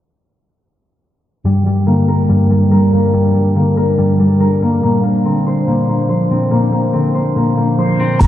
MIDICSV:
0, 0, Header, 1, 8, 480
1, 0, Start_track
1, 0, Key_signature, -2, "minor"
1, 0, Tempo, 422535
1, 1643, Time_signature, 4, 2, 24, 8
1, 9398, End_track
2, 0, Start_track
2, 0, Title_t, "Flute"
2, 0, Program_c, 0, 73
2, 9322, Note_on_c, 0, 82, 109
2, 9398, Note_off_c, 0, 82, 0
2, 9398, End_track
3, 0, Start_track
3, 0, Title_t, "Analog synth pad"
3, 0, Program_c, 1, 89
3, 1642, Note_on_c, 1, 70, 90
3, 1643, Note_on_c, 1, 55, 83
3, 1643, Note_on_c, 1, 62, 74
3, 5444, Note_off_c, 1, 55, 0
3, 5444, Note_off_c, 1, 70, 0
3, 5482, Note_on_c, 1, 58, 84
3, 5482, Note_on_c, 1, 72, 95
3, 9277, Note_off_c, 1, 62, 0
3, 9284, Note_off_c, 1, 58, 0
3, 9284, Note_off_c, 1, 72, 0
3, 9398, End_track
4, 0, Start_track
4, 0, Title_t, "Harp"
4, 0, Program_c, 2, 46
4, 1647, Note_on_c, 2, 55, 81
4, 1874, Note_off_c, 2, 55, 0
4, 1888, Note_on_c, 2, 55, 78
4, 2118, Note_on_c, 2, 58, 84
4, 2364, Note_on_c, 2, 70, 82
4, 2587, Note_off_c, 2, 55, 0
4, 2600, Note_on_c, 2, 55, 88
4, 2828, Note_off_c, 2, 55, 0
4, 2842, Note_on_c, 2, 55, 73
4, 3075, Note_off_c, 2, 70, 0
4, 3080, Note_on_c, 2, 70, 87
4, 3318, Note_off_c, 2, 58, 0
4, 3323, Note_on_c, 2, 58, 81
4, 3545, Note_off_c, 2, 55, 0
4, 3559, Note_on_c, 2, 55, 90
4, 3783, Note_off_c, 2, 55, 0
4, 3797, Note_on_c, 2, 55, 74
4, 4039, Note_off_c, 2, 58, 0
4, 4043, Note_on_c, 2, 58, 86
4, 4276, Note_off_c, 2, 70, 0
4, 4281, Note_on_c, 2, 70, 90
4, 4504, Note_off_c, 2, 55, 0
4, 4518, Note_on_c, 2, 55, 84
4, 4749, Note_off_c, 2, 55, 0
4, 4762, Note_on_c, 2, 55, 81
4, 4994, Note_off_c, 2, 70, 0
4, 4999, Note_on_c, 2, 70, 95
4, 5246, Note_off_c, 2, 58, 0
4, 5251, Note_on_c, 2, 58, 81
4, 5482, Note_off_c, 2, 58, 0
4, 5487, Note_on_c, 2, 58, 83
4, 5539, Note_off_c, 2, 55, 0
4, 5710, Note_off_c, 2, 58, 0
4, 5715, Note_on_c, 2, 58, 78
4, 5964, Note_on_c, 2, 60, 85
4, 6207, Note_on_c, 2, 72, 82
4, 6440, Note_off_c, 2, 58, 0
4, 6445, Note_on_c, 2, 58, 86
4, 6684, Note_off_c, 2, 58, 0
4, 6689, Note_on_c, 2, 58, 67
4, 6911, Note_off_c, 2, 72, 0
4, 6916, Note_on_c, 2, 72, 80
4, 7160, Note_off_c, 2, 60, 0
4, 7165, Note_on_c, 2, 60, 86
4, 7390, Note_off_c, 2, 58, 0
4, 7394, Note_on_c, 2, 58, 85
4, 7408, Note_off_c, 2, 70, 0
4, 7629, Note_off_c, 2, 58, 0
4, 7634, Note_on_c, 2, 58, 78
4, 7870, Note_off_c, 2, 60, 0
4, 7874, Note_on_c, 2, 60, 81
4, 8112, Note_off_c, 2, 72, 0
4, 8116, Note_on_c, 2, 72, 82
4, 8360, Note_off_c, 2, 58, 0
4, 8365, Note_on_c, 2, 58, 82
4, 8599, Note_off_c, 2, 58, 0
4, 8603, Note_on_c, 2, 58, 69
4, 8837, Note_off_c, 2, 72, 0
4, 8842, Note_on_c, 2, 72, 90
4, 9078, Note_off_c, 2, 60, 0
4, 9083, Note_on_c, 2, 60, 80
4, 9398, Note_off_c, 2, 58, 0
4, 9398, Note_off_c, 2, 60, 0
4, 9398, Note_off_c, 2, 72, 0
4, 9398, End_track
5, 0, Start_track
5, 0, Title_t, "Synth keys"
5, 0, Program_c, 3, 88
5, 1638, Note_on_c, 3, 43, 90
5, 1872, Note_off_c, 3, 43, 0
5, 1887, Control_c, 3, 64, 127
5, 2122, Note_on_c, 3, 50, 83
5, 2376, Note_on_c, 3, 58, 84
5, 2600, Note_on_c, 3, 43, 90
5, 2829, Note_off_c, 3, 43, 0
5, 2842, Note_on_c, 3, 43, 81
5, 3089, Note_on_c, 3, 55, 79
5, 3301, Note_off_c, 3, 43, 0
5, 3315, Note_on_c, 3, 43, 74
5, 3322, Note_off_c, 3, 50, 0
5, 3549, Note_off_c, 3, 43, 0
5, 3563, Note_on_c, 3, 43, 95
5, 3569, Note_off_c, 3, 58, 0
5, 3792, Note_off_c, 3, 43, 0
5, 4046, Note_on_c, 3, 50, 91
5, 4282, Note_on_c, 3, 58, 83
5, 4286, Note_off_c, 3, 55, 0
5, 4519, Note_on_c, 3, 43, 79
5, 4753, Note_off_c, 3, 43, 0
5, 4767, Note_on_c, 3, 43, 75
5, 5001, Note_on_c, 3, 55, 82
5, 5223, Note_off_c, 3, 43, 0
5, 5236, Note_on_c, 3, 43, 73
5, 5244, Note_off_c, 3, 50, 0
5, 5478, Note_on_c, 3, 46, 94
5, 5479, Note_off_c, 3, 43, 0
5, 5482, Note_off_c, 3, 55, 0
5, 5482, Note_off_c, 3, 58, 0
5, 5498, Control_c, 3, 64, 0
5, 5712, Note_off_c, 3, 46, 0
5, 5723, Control_c, 3, 64, 127
5, 5968, Note_on_c, 3, 50, 85
5, 6206, Note_on_c, 3, 58, 84
5, 6440, Note_on_c, 3, 46, 89
5, 6670, Note_off_c, 3, 46, 0
5, 6684, Note_on_c, 3, 46, 77
5, 6925, Note_on_c, 3, 53, 82
5, 7149, Note_off_c, 3, 46, 0
5, 7163, Note_on_c, 3, 46, 75
5, 7165, Note_off_c, 3, 50, 0
5, 7387, Note_off_c, 3, 46, 0
5, 7401, Note_on_c, 3, 46, 96
5, 7404, Note_off_c, 3, 58, 0
5, 7622, Note_off_c, 3, 46, 0
5, 7888, Note_on_c, 3, 50, 83
5, 8120, Note_on_c, 3, 58, 79
5, 8124, Note_off_c, 3, 53, 0
5, 8360, Note_on_c, 3, 46, 90
5, 8589, Note_off_c, 3, 46, 0
5, 8602, Note_on_c, 3, 46, 81
5, 8840, Note_on_c, 3, 53, 85
5, 9069, Note_off_c, 3, 46, 0
5, 9082, Note_on_c, 3, 46, 73
5, 9085, Note_off_c, 3, 50, 0
5, 9321, Note_off_c, 3, 53, 0
5, 9321, Note_off_c, 3, 58, 0
5, 9322, Note_off_c, 3, 46, 0
5, 9339, Control_c, 3, 64, 0
5, 9398, End_track
6, 0, Start_track
6, 0, Title_t, "808-style bass"
6, 0, Program_c, 4, 38
6, 9323, Note_on_c, 4, 31, 111
6, 9398, Note_off_c, 4, 31, 0
6, 9398, End_track
7, 0, Start_track
7, 0, Title_t, "Impact"
7, 0, Program_c, 5, 103
7, 9322, Note_on_c, 5, 60, 89
7, 9398, Note_off_c, 5, 60, 0
7, 9398, End_track
8, 0, Start_track
8, 0, Title_t, "Drums"
8, 9322, Note_on_c, 9, 42, 76
8, 9322, Note_on_c, 9, 49, 102
8, 9398, Note_off_c, 9, 42, 0
8, 9398, Note_off_c, 9, 49, 0
8, 9398, End_track
0, 0, End_of_file